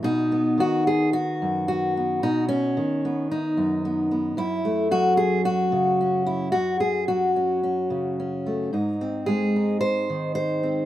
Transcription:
0.03 B2 D#4
0.32 B3
0.58 D#3 F#4
0.87 G#4
1.13 F#4
1.42 F#2
1.68 F#4
1.97 B3
2.23 B2 D#4
2.49 C#4
2.77 D#3
3.05 B3
3.31 D#4
3.57 F#2
3.85 B3
4.11 B3
4.37 F#2 E4
4.65 A3
4.91 F#3 F#4
5.17 G#4
5.45 F#4
5.72 C#3
6.01 C#4
6.26 E4
6.52 F#2 F#4
6.80 G#4
7.08 F#3 F#4
7.36 C#4
7.63 C#4
7.90 C#3
8.20 C#4
8.46 A3
8.73 G#2 D#4
9.01 C4
9.26 G#3 G#4
9.56 D#4
9.81 C5
10.10 D#3
10.35 C5
10.63 C4

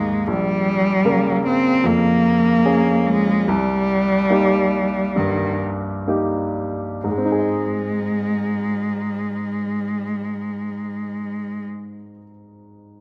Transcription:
Already playing: D#2 G#3 A#3 D#4 G#4
0.27 A#1 G3
1.05 C#3 A#3 A#4
1.46 C4
1.84 F2 A#3
2.65 A#3 C#4 G#4
3.06 G#3
3.48 C2 G3
4.29 A#3 D#4 G4
5.16 G2 D#3
6.07 A#3 D#4 G4
7.04 G#2 G#3
7.11 G#3
7.18 C4
7.25 D#4
7.32 G#4
7.39 D#5

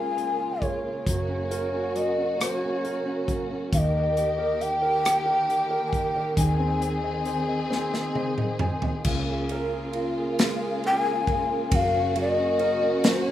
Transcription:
Already playing: C#2 C#3 G#3 A#3 F4 G#4 A#4 G#5
0.16 A#3, closed hi-hat
0.39 F4
0.61 G#4 C#5, kick, closed hi-hat
0.84 F4
1.05 F#1 F#3 F#4, kick, closed hi-hat
1.29 C#4
1.51 A#4, closed hi-hat
1.72 C#4
1.95 F#3 D#5, closed hi-hat
2.18 C#4
2.39 F#3 C5, cross-stick, closed hi-hat
2.54 C#5
2.63 C#4
2.84 A#4, closed hi-hat
3.06 C#4
3.28 F#3, kick, closed hi-hat
3.51 C#4
3.71 D#2 D#3 G4 F5, kick, closed hi-hat
3.78 D#5
3.94 A#3
4.17 G4, closed hi-hat
4.38 A#4
4.60 G4 G5, closed hi-hat
4.82 A#4
5.04 A#3, cross-stick, closed hi-hat
5.26 A#4
5.48 G4, closed hi-hat
5.70 A#4
5.87 G#5
5.93 G4 G5, kick, closed hi-hat
6.16 A#4
6.36 D#2 D#3 C4 G#4 G#5, kick, closed hi-hat
6.59 C4
6.81 C5, closed hi-hat
7.04 D#5
7.25 C5, closed hi-hat
7.48 D#5
7.70 C4, snare
7.94 D#5, snare
8.15 C5 D#5, high tom
8.38 D#5, mid tom
8.59 C5 G#5, mid tom
8.82 D#5, floor tom
9.04 C#2 C#3 A#3 F4, kick, crash
9.28 G#4
9.49 A#4, ride
9.73 G#4
9.93 F4, ride
10.18 G#4
10.39 G#3, snare, ride
10.63 G#4
10.84 A#4 G5, ride
11.00 G#5
11.07 G#4
11.27 F4, kick, ride
11.50 G#4
11.71 F#1 F#3 F#4 F5, kick, ride
11.94 C#4
12.15 F#3, ride
12.20 D#5
12.38 C#4
12.59 A#4, ride
12.82 C#4
13.04 F#3, snare, ride
13.08 C5
13.24 C#4 C#5

